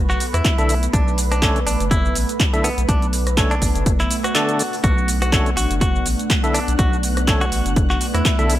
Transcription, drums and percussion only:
0.10 clap, shaker
0.20 open hi-hat, shaker
0.34 cross-stick, closed hi-hat, shaker
0.45 kick, clap, closed hi-hat, shaker
0.58 closed hi-hat, shaker
0.69 open hi-hat, shaker
0.83 closed hi-hat, shaker
0.93 kick, closed hi-hat, shaker
1.08 shaker
1.18 open hi-hat, shaker
1.32 cross-stick, closed hi-hat, shaker
1.42 kick, clap, closed hi-hat, shaker
1.56 closed hi-hat, shaker
1.67 open hi-hat, shaker
1.80 closed hi-hat, shaker
1.91 kick, closed hi-hat, shaker
2.05 shaker
2.15 open hi-hat, shaker
2.29 closed hi-hat, shaker
2.40 kick, clap, closed hi-hat, shaker
2.54 closed hi-hat, shaker
2.64 open hi-hat, shaker
2.78 closed hi-hat, shaker
2.89 kick, closed hi-hat, shaker
3.02 closed hi-hat, shaker
3.13 open hi-hat, shaker
3.27 cross-stick, closed hi-hat, shaker
3.37 kick, clap, closed hi-hat, shaker
3.51 closed hi-hat, shaker
3.62 kick, open hi-hat, shaker
3.75 closed hi-hat, shaker
3.86 kick, closed hi-hat, shaker
4.00 clap, closed hi-hat, shaker
4.11 open hi-hat, shaker
4.24 cross-stick, closed hi-hat, shaker
4.35 clap, closed hi-hat, shaker
4.49 closed hi-hat, shaker
4.59 open hi-hat, shaker
4.73 open hi-hat, shaker
4.84 kick, closed hi-hat, shaker
4.98 shaker
5.08 open hi-hat, shaker
5.22 cross-stick, closed hi-hat, shaker
5.32 kick, clap, closed hi-hat, shaker
5.46 closed hi-hat, shaker
5.57 open hi-hat, shaker
5.71 closed hi-hat, shaker
5.81 kick, closed hi-hat, shaker
5.96 shaker
6.06 open hi-hat, shaker
6.19 closed hi-hat, shaker
6.30 kick, clap, closed hi-hat, shaker
6.44 closed hi-hat, shaker
6.54 open hi-hat, shaker
6.68 closed hi-hat, shaker
6.79 kick, closed hi-hat, shaker
6.93 shaker
7.03 open hi-hat, shaker
7.17 cross-stick, closed hi-hat, shaker
7.28 kick, clap, closed hi-hat, shaker
7.41 closed hi-hat, shaker
7.52 open hi-hat, shaker
7.66 closed hi-hat, shaker
7.76 kick, closed hi-hat, shaker
7.91 clap, shaker
8.01 open hi-hat, shaker
8.15 cross-stick, closed hi-hat, shaker
8.25 kick, clap, closed hi-hat, shaker
8.39 closed hi-hat, shaker
8.50 open hi-hat, shaker

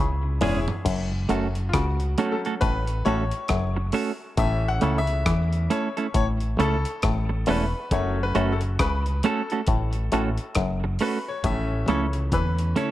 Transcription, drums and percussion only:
0.41 floor tom, open hi-hat
0.68 floor tom
0.86 kick, closed hi-hat, crash
1.29 closed hi-hat
1.55 closed hi-hat
1.74 kick, cross-stick, closed hi-hat
2.00 closed hi-hat
2.18 closed hi-hat
2.45 closed hi-hat
2.61 kick, closed hi-hat
2.87 closed hi-hat
3.06 closed hi-hat
3.31 closed hi-hat
3.48 kick, cross-stick, closed hi-hat
3.92 open hi-hat
4.37 kick, closed hi-hat
4.81 closed hi-hat
5.07 closed hi-hat
5.26 kick, cross-stick, closed hi-hat
5.53 closed hi-hat
5.71 closed hi-hat
5.97 closed hi-hat
6.14 kick, closed hi-hat
6.40 closed hi-hat
6.60 closed hi-hat
6.85 closed hi-hat
7.02 kick, cross-stick, closed hi-hat
7.46 open hi-hat
7.91 kick, closed hi-hat
8.35 closed hi-hat
8.61 closed hi-hat
8.79 kick, cross-stick, closed hi-hat
9.06 closed hi-hat
9.23 closed hi-hat
9.50 closed hi-hat
9.67 kick, closed hi-hat
9.93 closed hi-hat
10.12 closed hi-hat
10.38 closed hi-hat
10.55 kick, cross-stick, closed hi-hat
10.99 open hi-hat
11.44 kick, closed hi-hat, high tom
11.88 closed hi-hat, high tom
12.13 closed hi-hat
12.32 kick, closed hi-hat, mid tom
12.59 closed hi-hat
12.76 closed hi-hat, mid tom

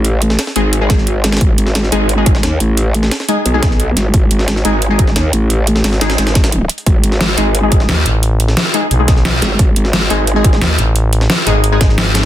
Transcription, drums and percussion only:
0.05 closed hi-hat
0.22 closed hi-hat
0.30 snare
0.39 snare, closed hi-hat, open hi-hat
0.47 snare
0.56 closed hi-hat
0.73 closed hi-hat
0.90 kick, snare, closed hi-hat
0.98 snare
1.07 closed hi-hat
1.24 snare, closed hi-hat
1.32 snare, closed hi-hat
1.37 snare, closed hi-hat
1.41 kick, closed hi-hat
1.58 closed hi-hat
1.67 snare
1.75 snare, closed hi-hat
1.84 snare
1.92 closed hi-hat
2.09 closed hi-hat
2.26 kick, closed hi-hat
2.35 snare
2.43 snare, closed hi-hat
2.60 closed hi-hat
2.77 closed hi-hat
2.94 closed hi-hat
3.03 snare
3.11 snare, closed hi-hat, open hi-hat
3.20 snare
3.29 closed hi-hat
3.46 closed hi-hat
3.63 kick, snare, closed hi-hat
3.71 snare
3.80 closed hi-hat
3.97 snare, closed hi-hat
4.14 kick, closed hi-hat
4.31 closed hi-hat
4.39 snare
4.48 snare, closed hi-hat
4.56 snare
4.65 closed hi-hat
4.82 closed hi-hat
4.99 kick, closed hi-hat
5.07 snare
5.16 snare, closed hi-hat
5.33 closed hi-hat
5.50 closed hi-hat
5.67 closed hi-hat
5.76 snare
5.84 snare, closed hi-hat, open hi-hat
5.93 snare
6.01 snare, closed hi-hat
6.10 snare, closed hi-hat
6.18 snare, closed hi-hat
6.27 snare, closed hi-hat
6.35 kick, snare, closed hi-hat
6.44 snare, closed hi-hat
6.52 closed hi-hat
6.69 closed hi-hat
6.78 closed hi-hat
6.86 kick, closed hi-hat
7.04 closed hi-hat
7.12 snare
7.21 snare, closed hi-hat
7.29 snare
7.38 closed hi-hat
7.55 closed hi-hat
7.72 kick, closed hi-hat
7.80 snare
7.89 snare, closed hi-hat
8.06 closed hi-hat
8.23 closed hi-hat
8.40 closed hi-hat
8.48 snare
8.57 snare, closed hi-hat, open hi-hat
8.65 snare
8.74 closed hi-hat
8.91 closed hi-hat
9.08 kick, snare, closed hi-hat
9.17 snare
9.25 snare, closed hi-hat
9.42 snare, closed hi-hat
9.59 kick, closed hi-hat
9.76 closed hi-hat
9.85 snare
9.93 snare, closed hi-hat
10.02 snare
10.10 closed hi-hat
10.27 closed hi-hat
10.44 kick, closed hi-hat
10.53 snare
10.62 snare, closed hi-hat
10.79 closed hi-hat
10.96 closed hi-hat
11.13 closed hi-hat
11.21 snare
11.30 snare, closed hi-hat, open hi-hat
11.38 snare
11.47 closed hi-hat
11.64 closed hi-hat
11.81 kick, snare, closed hi-hat
11.89 snare
11.98 snare, closed hi-hat
12.15 snare, closed hi-hat

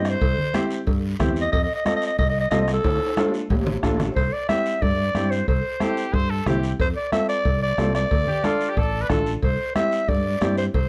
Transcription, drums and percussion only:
0.05 bombo rim, short guiro
0.21 bombo low, cowbell, long guiro
0.38 low conga
0.54 bombo rim, cowbell, high conga, short guiro
0.71 short guiro
0.87 bombo low, cowbell, long guiro
1.20 bombo low, bombo rim, cowbell, high conga, low conga, short guiro
1.36 short guiro
1.53 bombo low, cowbell, long guiro
1.86 bombo rim, cowbell, high conga, short guiro
2.02 short guiro
2.19 bombo low, cowbell, long guiro
2.51 bombo rim, cowbell, high conga, low timbale, short guiro
2.68 bombo rim, short guiro
2.84 bombo low, cowbell, high timbale, long guiro
2.95 high timbale
3.06 high timbale
3.17 bombo rim, cowbell, high conga, high timbale, short guiro
3.28 low timbale
3.34 short guiro
3.50 bombo low, cowbell, high conga, low timbale, long guiro
3.61 low timbale
3.67 low conga
3.72 low timbale
3.83 bombo low, bombo rim, cowbell, low timbale, short guiro
3.94 low timbale
4.00 bombo rim, low conga, short guiro
4.05 low timbale
4.16 bombo low, cowbell, long guiro
4.49 bombo rim, cowbell, high conga, short guiro
4.66 short guiro
4.82 bombo low, cowbell, high conga, long guiro
5.15 bombo rim, cowbell, high conga, short guiro
5.32 short guiro
5.48 bombo low, cowbell, long guiro
5.80 bombo rim, cowbell, high conga, short guiro
5.97 short guiro
6.14 bombo low, cowbell, long guiro
6.46 bombo rim, cowbell, high conga, low conga, low timbale, short guiro
6.63 short guiro
6.79 bombo low, cowbell, long guiro
7.12 bombo rim, cowbell, high conga, short guiro
7.29 short guiro
7.45 bombo low, cowbell, long guiro
7.78 bombo rim, cowbell, high conga, low timbale, short guiro
7.95 bombo rim, short guiro
8.11 bombo low, cowbell, long guiro
8.27 low conga
8.44 bombo rim, cowbell, high conga, short guiro
8.61 short guiro
8.77 bombo low, cowbell, long guiro
9.10 bombo low, bombo rim, cowbell, high conga, low conga, short guiro
9.26 short guiro
9.43 bombo low, cowbell, long guiro
9.75 bombo rim, cowbell, high conga, short guiro
9.92 short guiro
10.08 bombo low, cowbell, high conga, long guiro
10.41 bombo rim, cowbell, high conga, low timbale, short guiro
10.58 short guiro
10.74 bombo low, cowbell, long guiro

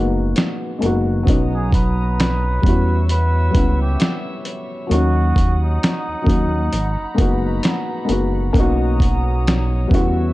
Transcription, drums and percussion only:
0.36 snare, closed hi-hat
0.82 closed hi-hat
1.27 kick, closed hi-hat
1.72 kick, closed hi-hat
2.20 snare, closed hi-hat
2.63 kick, closed hi-hat
3.09 closed hi-hat
3.55 kick, closed hi-hat
4.00 snare, closed hi-hat
4.45 closed hi-hat
4.91 closed hi-hat
5.36 kick, closed hi-hat
5.83 snare, closed hi-hat
6.27 kick, closed hi-hat
6.73 closed hi-hat
7.18 kick, closed hi-hat
7.63 snare, closed hi-hat
8.09 closed hi-hat
8.54 kick, closed hi-hat
9.00 kick, closed hi-hat
9.47 snare, closed hi-hat
9.91 kick, closed hi-hat

